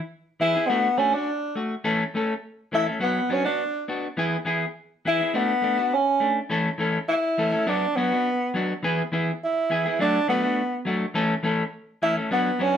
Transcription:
0.40 E3 B3 E4 G#4
0.55 B3 E4 G#4
0.67 A3 B3 D4 F#4
0.97 A3 C#4 D4 F#4
1.12 D4 F#4
1.55 A3 F#4
1.84 E3 A3 C#4 A4
2.14 A3 C#4 A4, muted clean electric guitar stroke
2.72 E3 A3 C#4 E4 A4
2.86 A3 C#4 A4
3.00 F#3 B3 F#4, muted clean electric guitar stroke
3.29 F#3 B3 C#4 D4 F#4
3.44 B3 D4 F#4
3.88 B3 D4 F#4
4.17 E3 B3 E4 G#4
4.45 E3 B3 E4 G#4
5.05 E3 B3 E4 G#4
5.20 B3 E4 G#4
5.34 A3 B3 D4 F#4
5.62 A3 D4, muted clean electric guitar stroke
5.77 D4 F#4
5.94 C#4
6.20 A3 D4
6.50 E3 A3 C#4 A4
6.78 E3 A3 C#4 A4
7.09 E4
7.38 E3 A3 C#4 A4
7.52 A3 C#4 A4
7.66 F#3 B3 D4 F#4
7.96 F#3 B3 D4 F#4
8.12 B3 D4 F#4
8.54 F#3 B3 D4 F#4
8.83 E3 B3 E4 G#4
9.12 E3 B3 E4 G#4
9.44 E4
9.70 E3 B3 E4 G#4
9.86 B3 E4 G#4
9.99 F#3 A3 D4 F#4
10.28 F#3 A3 B3 D4 F#4
10.43 A3 D4 F#4
10.85 F#3 A3 D4 F#4
11.14 E3 A3 C#4 A4
11.43 E3 A3 C#4 A4
12.02 E3 A3 C#4 E4 A4
12.17 A3 C#4 A4
12.31 F#3 B3 D4 F#4
12.59 F#3 B3 C#4 D4 F#4
12.74 F#4

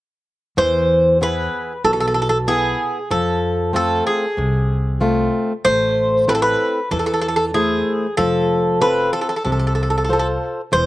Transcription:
0.57 E2 E3 C5
1.21 B3 E4 G#4 B4
1.84 B1 B2 A4
1.93 A4
2.00 A4
2.07 A4
2.14 A4
2.22 A4
2.29 A4
2.48 B3 E4 G#4
3.11 F2 F3 A4
3.73 A3 C4 F4 A4
4.07 G#4
4.37 C2 C3
5.00 A3 C4 F4
5.65 A1 A3 C5
6.28 C4 E4 A4 B4
6.35 A4
6.42 B4
6.91 E2 E3 A4
6.99 A4
7.06 A4
7.14 A4
7.21 A4
7.28 A4
7.36 A4
7.54 A3 E4 G#4 C5
8.17 F1 F3 A4
8.81 C4 F4 A4 B4
9.13 A4
9.21 A4
9.29 A4
9.36 A4
9.44 C2 C3 A4
9.52 A4
9.59 A4
9.67 A4
9.75 A4
9.83 A4
9.90 A4
9.98 A4
10.04 A4
10.09 F4 A4 C5
10.19 A4
10.72 E1 E3 C5

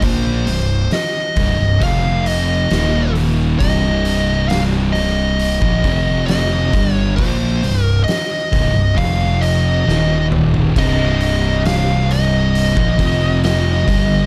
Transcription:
0.02 A#1 A#2 F3 A#3 C5, kick, open hi-hat
0.46 C1 C2 G2, open hi-hat
0.91 D#5, snare, open hi-hat
1.36 C1 C2 G2, kick, open hi-hat
1.59 C1 C2 G2
1.81 F1 F2 C3 F3 F5, kick, open hi-hat
2.26 D#5, open hi-hat
2.70 D#1 D#2 A#2 D#3, snare, open hi-hat
3.15 open hi-hat
3.59 C1 C2 G2 C3 D#5, kick, open hi-hat
4.05 open hi-hat
4.48 F5, snare, open hi-hat
4.93 D#5, snare, open hi-hat
5.39 open hi-hat
5.62 A#1 A#2 F3, kick
5.84 F1 F2 C3 F3, kick, open hi-hat
6.26 D#5, snare, open hi-hat
6.73 G1 G2 D3 G3, kick, open hi-hat
6.93 C#5
7.16 A#1 A#2 F3 A#3 C5, kick, open hi-hat
7.63 C1 C2 G2, open hi-hat
7.83 A#4
8.04 D#5
8.08 snare, open hi-hat
8.52 C1 C2 G2, kick, open hi-hat
8.74 C1 C2 G2
8.97 F1 F2 C3 F3 F5, kick, open hi-hat
9.41 D#5, open hi-hat
9.86 D#1 D#2 A#2 D#3, snare
10.32 mid tom
10.54 floor tom
10.76 C1 C2 G2 C3 D#5, kick, open hi-hat, crash
11.21 open hi-hat
11.65 F5, snare, open hi-hat
12.11 D#5, open hi-hat
12.55 open hi-hat
12.76 A#1 A#2 F3, kick
12.99 F1 F2 C3 F3, kick, open hi-hat
13.44 D#5, snare, open hi-hat
13.88 G1 G2 D3 G3, kick, open hi-hat

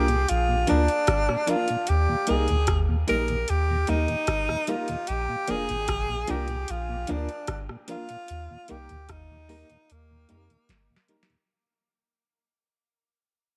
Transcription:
Already playing: C2 G4
0.08 A#2, muted clean electric guitar stroke, closed hi-hat
0.28 A#1 F4, closed hi-hat
0.49 A#2
0.67 D2 F3 A#3 D4 F4 A#4, closed hi-hat
0.88 closed hi-hat
1.07 kick, cross-stick, closed hi-hat
1.29 A#2, cross-stick
1.47 F3 A#3 D4 F4 A#4, closed hi-hat
1.68 A#2, closed hi-hat
1.87 D#2 G4, closed hi-hat
2.09 D#2 A#2
2.27 C2 G3 A#3 D#4 G4 G#4 A#4, closed hi-hat
2.48 D2 D#2 A#2, closed hi-hat
2.67 D#2, kick, cross-stick, closed hi-hat
2.89 D#2 A#2
3.07 A#1 G3 A#3 D#4 G4 A#4, closed hi-hat
3.28 D#2 A#2, muted clean electric guitar stroke, closed hi-hat
3.48 D#2 G4, closed hi-hat
3.70 D#2 A#2
3.87 D#2 G3 A#3 D#4 G4 A#4, closed hi-hat
4.08 D#2 A#2, closed hi-hat
4.27 kick, cross-stick, closed hi-hat
4.49 D#2 A#2, cross-stick
4.67 G3 A#3 D#4 F4 G4 A#4, closed hi-hat
4.88 D#2 A#2, closed hi-hat
5.07 A#1 G4, closed hi-hat
5.29 A#2
5.48 F1 F3 A#3 D4 F4 G#4 A#4, closed hi-hat
5.69 G#1 A#2, closed hi-hat
5.88 A#1, kick, cross-stick, closed hi-hat
6.09 A#2
6.27 C2 F3 A#3 D4 F4 G4 A#4, closed hi-hat
6.48 A#2, closed hi-hat
6.68 A#1 F4, closed hi-hat
6.89 A#2
7.07 D2 F3 A#3 D4 F4 A#4, closed hi-hat
7.29 closed hi-hat
7.47 kick, cross-stick, closed hi-hat
7.69 A#2, cross-stick
7.88 F3 A#3 D4 F4 A#4, closed hi-hat
8.09 A#2, closed hi-hat
8.28 D#2, closed hi-hat
8.51 D#2 A#2
8.68 C2 G3 A#3 D#4 G4 A#4, closed hi-hat
8.89 D2 D#2 A#2, closed hi-hat
9.09 D#2 D#4, kick, cross-stick, closed hi-hat
9.30 D#2 A#2
9.49 G3 A#3 D#4 G4 A#4, open hi-hat
9.70 D#2 A#2, closed hi-hat
9.90 D#2 A#3, closed hi-hat
10.11 D#2 A#2
10.29 F2 G3 A#3 D#4 G4 A#4, closed hi-hat
10.50 D#2 A#2, closed hi-hat
10.69 kick, snare, closed hi-hat
10.90 D#2 A#2
10.96 snare
11.08 G3 A#3 D#4 G4 A#4, closed hi-hat
11.23 snare
11.30 D#2 A#2, closed hi-hat

